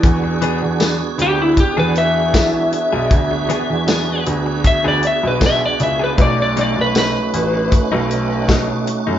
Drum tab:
HH |xxxxxxxx|xxxxxxxx|xxxxxxxx|
TB |--x---x-|--x---x-|--x---x-|
SD |--o---o-|--o---o-|--o---o-|
BD |o---o-o-|o---o-o-|o---o-o-|